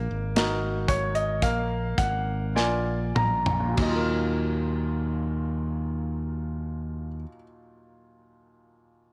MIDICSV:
0, 0, Header, 1, 4, 480
1, 0, Start_track
1, 0, Key_signature, -6, "minor"
1, 0, Tempo, 1048951
1, 650, Tempo, 1136364
1, 1130, Tempo, 1239669
1, 1602, Time_signature, 4, 2, 24, 8
1, 3674, End_track
2, 0, Start_track
2, 0, Title_t, "Grand piano"
2, 0, Program_c, 0, 0
2, 0, Control_c, 0, 64, 127
2, 0, Note_on_c, 0, 58, 70
2, 164, Note_on_c, 0, 63, 53
2, 166, Note_on_c, 0, 66, 47
2, 168, Note_on_c, 0, 70, 56
2, 404, Note_on_c, 0, 73, 68
2, 517, Note_off_c, 0, 73, 0
2, 526, Note_on_c, 0, 75, 68
2, 633, Note_off_c, 0, 58, 0
2, 635, Note_off_c, 0, 63, 0
2, 636, Note_off_c, 0, 66, 0
2, 637, Note_off_c, 0, 70, 0
2, 641, Note_off_c, 0, 75, 0
2, 651, Note_on_c, 0, 58, 65
2, 651, Note_on_c, 0, 77, 66
2, 655, Control_c, 0, 64, 0
2, 738, Control_c, 0, 64, 127
2, 870, Note_off_c, 0, 77, 0
2, 886, Note_on_c, 0, 78, 61
2, 1113, Note_off_c, 0, 78, 0
2, 1129, Note_on_c, 0, 65, 46
2, 1130, Note_on_c, 0, 70, 44
2, 1131, Note_on_c, 0, 80, 66
2, 1132, Note_on_c, 0, 74, 54
2, 1347, Note_off_c, 0, 80, 0
2, 1362, Note_on_c, 0, 82, 67
2, 1533, Note_on_c, 0, 39, 52
2, 1561, Note_on_c, 0, 46, 48
2, 1587, Note_off_c, 0, 58, 0
2, 1587, Note_off_c, 0, 82, 0
2, 1588, Note_off_c, 0, 65, 0
2, 1588, Note_off_c, 0, 70, 0
2, 1588, Note_on_c, 0, 54, 50
2, 1589, Note_off_c, 0, 74, 0
2, 1608, Control_c, 0, 64, 0
2, 1616, Note_on_c, 0, 63, 48
2, 1644, Note_on_c, 0, 65, 51
2, 1671, Note_on_c, 0, 70, 58
2, 1684, Control_c, 0, 64, 127
2, 2876, Note_off_c, 0, 39, 0
2, 2904, Note_off_c, 0, 46, 0
2, 2931, Note_off_c, 0, 54, 0
2, 2959, Note_off_c, 0, 63, 0
2, 2987, Note_off_c, 0, 65, 0
2, 3014, Note_off_c, 0, 70, 0
2, 3674, End_track
3, 0, Start_track
3, 0, Title_t, "Fingered electric bass"
3, 0, Program_c, 1, 33
3, 49, Note_on_c, 1, 32, 83
3, 650, Note_off_c, 1, 32, 0
3, 650, Note_on_c, 1, 34, 97
3, 869, Note_off_c, 1, 34, 0
3, 886, Note_on_c, 1, 32, 72
3, 1131, Note_off_c, 1, 32, 0
3, 1131, Note_on_c, 1, 34, 80
3, 1347, Note_off_c, 1, 34, 0
3, 1362, Note_on_c, 1, 34, 81
3, 1587, Note_off_c, 1, 34, 0
3, 1603, Note_on_c, 1, 39, 91
3, 2946, Note_off_c, 1, 39, 0
3, 3674, End_track
4, 0, Start_track
4, 0, Title_t, "Drums"
4, 166, Note_on_c, 9, 42, 79
4, 168, Note_on_c, 9, 38, 118
4, 212, Note_off_c, 9, 42, 0
4, 214, Note_off_c, 9, 38, 0
4, 405, Note_on_c, 9, 36, 85
4, 405, Note_on_c, 9, 42, 64
4, 450, Note_off_c, 9, 36, 0
4, 451, Note_off_c, 9, 42, 0
4, 527, Note_on_c, 9, 42, 44
4, 573, Note_off_c, 9, 42, 0
4, 651, Note_on_c, 9, 36, 83
4, 651, Note_on_c, 9, 42, 73
4, 693, Note_off_c, 9, 36, 0
4, 693, Note_off_c, 9, 42, 0
4, 886, Note_on_c, 9, 36, 89
4, 886, Note_on_c, 9, 42, 76
4, 928, Note_off_c, 9, 36, 0
4, 928, Note_off_c, 9, 42, 0
4, 1133, Note_on_c, 9, 38, 54
4, 1172, Note_off_c, 9, 38, 0
4, 1363, Note_on_c, 9, 45, 91
4, 1402, Note_off_c, 9, 45, 0
4, 1480, Note_on_c, 9, 43, 82
4, 1519, Note_off_c, 9, 43, 0
4, 1600, Note_on_c, 9, 49, 75
4, 1603, Note_on_c, 9, 36, 97
4, 1639, Note_off_c, 9, 49, 0
4, 1642, Note_off_c, 9, 36, 0
4, 3674, End_track
0, 0, End_of_file